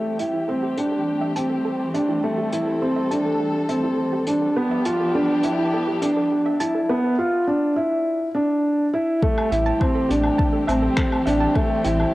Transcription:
Already playing: string section E3 G3 A3 C4 G4, grand piano A3
0.19 grand piano E4, synth arpeggio sound E5, closed hi-hat
0.34 synth arpeggio sound E4
0.48 grand piano C4, synth arpeggio sound A4
0.63 synth arpeggio sound G4
0.77 grand piano D4, synth arpeggio sound A4, closed hi-hat
0.92 synth arpeggio sound A4
1.21 synth arpeggio sound E5
1.36 grand piano C4, synth arpeggio sound A5, closed hi-hat
1.50 synth arpeggio sound A4
1.65 synth arpeggio sound A4
1.94 grand piano D4, synth arpeggio sound E5, closed hi-hat
2.09 synth arpeggio sound E4
2.23 grand piano A3, string section A4, synth arpeggio sound A4
2.38 synth arpeggio sound G4
2.52 grand piano E4, synth arpeggio sound A4, closed hi-hat
2.67 synth arpeggio sound A4
2.82 grand piano C4
2.96 synth arpeggio sound E5
3.11 grand piano D4, synth arpeggio sound A5, closed hi-hat
3.25 synth arpeggio sound A4
3.40 synth arpeggio sound A4
3.69 grand piano C4, synth arpeggio sound E5, closed hi-hat
3.84 synth arpeggio sound E4
3.98 synth arpeggio sound A4
4.13 synth arpeggio sound G4
4.26 grand piano D4, synth arpeggio sound A4, closed hi-hat
4.42 synth arpeggio sound A4
4.56 string section F3 B3 D4 G4, grand piano B3
4.71 synth arpeggio sound E5
4.85 grand piano F4, synth arpeggio sound A5, closed hi-hat
5.00 synth arpeggio sound A4
5.15 grand piano D4, synth arpeggio sound A4
5.43 grand piano E4, synth arpeggio sound E5, closed hi-hat
5.58 synth arpeggio sound E4
5.73 synth arpeggio sound A4
5.87 synth arpeggio sound G4
6.02 grand piano D4, synth arpeggio sound A4, closed hi-hat
6.17 synth arpeggio sound A4
6.46 synth arpeggio sound E5
6.60 grand piano E4, synth arpeggio sound A5, closed hi-hat
6.75 synth arpeggio sound A4
6.89 grand piano B3
7.19 grand piano F4
7.48 grand piano D4
7.76 grand piano E4
8.35 grand piano D4
8.94 grand piano E4
9.22 string section E3 G3 A3 C4 G4, grand piano A3, synth arpeggio sound A4, kick
9.38 low woodblock
9.52 sub bass A1, grand piano E4, synth arpeggio sound E5, closed hi-hat
9.66 synth arpeggio sound A5
9.80 grand piano C4, synth arpeggio sound E4, kick, low woodblock
9.95 synth arpeggio sound A4
10.09 sub bass A1, grand piano D4, synth arpeggio sound G4, closed hi-hat
10.24 low woodblock
10.38 synth arpeggio sound A5, kick
10.53 synth arpeggio sound A4
10.67 sub bass A1, grand piano C4, synth arpeggio sound E5, closed hi-hat, low woodblock
10.82 synth arpeggio sound A4
10.97 synth arpeggio sound A4, finger snap, kick
11.12 low woodblock
11.26 sub bass A1, grand piano D4, synth arpeggio sound E5, closed hi-hat
11.40 synth arpeggio sound A5
11.55 grand piano A3, synth arpeggio sound E4, kick, low woodblock
11.70 synth arpeggio sound A4
11.84 sub bass A1, grand piano E4, synth arpeggio sound G4, closed hi-hat
12.00 low woodblock

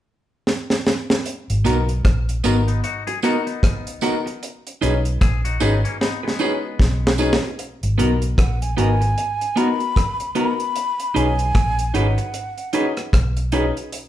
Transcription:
0.47 snare
0.70 snare
0.87 snare
1.10 snare
1.26 closed hi-hat
1.50 fingered electric bass G#1, closed hi-hat
1.64 fingered electric bass B1, grand piano B3 D#4 F#4 A#4, clean electric guitar B3 F#4 A#4, closed hi-hat, tambourine
1.89 closed hi-hat
2.05 fingered electric bass A#1, kick, cross-stick, closed hi-hat
2.29 closed hi-hat
2.44 fingered electric bass G#1, grand piano B3 D#4 F#4 A#4, clean electric guitar B3 F#4 A#4, closed hi-hat, tambourine
2.68 clean electric guitar B3 D#4, closed hi-hat
2.84 clean electric guitar D#4 F#4, closed hi-hat
3.07 clean electric guitar G#4, muted clean electric guitar stroke, closed hi-hat
3.22 grand piano B3 D#4 F#4 A#4, clean electric guitar B3 D#4 F#4 A#4, closed hi-hat, tambourine
3.46 clean electric guitar B3 D#4, grand piano F#4 A#4, closed hi-hat
3.63 kick, cross-stick, closed hi-hat
3.87 closed hi-hat
4.01 grand piano B3 D#4 F#4 A#4, clean electric guitar B3 F#4 A#4, closed hi-hat, tambourine
4.26 grand piano F#4 A#4, muted clean electric guitar stroke, closed hi-hat
4.43 closed hi-hat
4.67 closed hi-hat
4.81 fingered electric bass B1, grand piano C#4 D#4 F#4 G#4, clean electric guitar D#4 G#4 B4, closed hi-hat, tambourine
5.05 closed hi-hat
5.21 fingered electric bass A#1, clean electric guitar G#4, kick, cross-stick, closed hi-hat
5.45 clean electric guitar D#4 F#4, closed hi-hat
5.60 fingered electric bass G#1, clean electric guitar B3 D#4 G#4 B4, grand piano C#4 D#4 F#4 G#4, closed hi-hat, tambourine
5.84 clean electric guitar A#3 C#4, closed hi-hat
6.01 clean electric guitar B3 D#4, snare
6.23 clean electric guitar G#3 B3, muted clean electric guitar stroke
6.28 snare
6.39 grand piano C#4 D#4 F#4 G#4, clean electric guitar D#4 G#4 B4, tambourine
6.64 grand piano F#4 G#4
6.79 fingered electric bass B1, kick, snare
7.07 snare
7.18 grand piano C#4 D#4 F#4 G#4, clean electric guitar D#4 G#4 B4, tambourine
7.33 snare
7.42 grand piano F#4 G#4, muted clean electric guitar stroke
7.59 closed hi-hat
7.83 fingered electric bass G#1, closed hi-hat
7.98 fingered electric bass B1, grand piano B3 D#4 F#4 A#4, clean electric guitar B3 F#4 A#4, closed hi-hat
8.22 closed hi-hat
8.38 fingered electric bass A#1, flute F#5, kick, cross-stick, closed hi-hat
8.62 flute G#5, closed hi-hat
8.77 fingered electric bass G#1, clean electric guitar B3 F#4 A#4, grand piano B3 D#4 F#4 A#4, flute G#5, closed hi-hat
9.01 muted clean electric guitar stroke, closed hi-hat
9.18 closed hi-hat
9.41 closed hi-hat
9.56 clean electric guitar B3 F#4 A#4, grand piano B3 D#4 F#4 A#4, flute B5, closed hi-hat
9.80 grand piano F#4 A#4, closed hi-hat
9.96 kick, cross-stick, closed hi-hat
10.20 closed hi-hat
10.35 clean electric guitar B3 F#4 A#4, grand piano B3 D#4 F#4 A#4, flute B5, closed hi-hat
10.59 grand piano F#4 A#4, closed hi-hat
10.76 closed hi-hat
11.00 closed hi-hat
11.15 fingered electric bass B1, grand piano C#4 D#4 F#4 G#4, clean electric guitar D#4 G#4 B4, flute G#5, closed hi-hat
11.39 closed hi-hat
11.55 fingered electric bass A#1, kick, cross-stick, closed hi-hat
11.79 closed hi-hat
11.93 fingered electric bass G#1, grand piano C#4 D#4 F#4 G#4, clean electric guitar D#4 G#4 B4, flute F#5, closed hi-hat
12.18 muted clean electric guitar stroke, closed hi-hat
12.34 closed hi-hat
12.58 closed hi-hat
12.73 grand piano C#4 D#4 F#4 G#4, clean electric guitar D#4 G#4 B4, closed hi-hat
12.97 grand piano F#4 G#4, cross-stick, closed hi-hat
13.13 fingered electric bass B1, kick, cross-stick, closed hi-hat
13.37 closed hi-hat
13.52 grand piano C#4 D#4 F#4 G#4, clean electric guitar D#4 G#4 B4, closed hi-hat
13.76 grand piano F#4 G#4, closed hi-hat
13.92 closed hi-hat

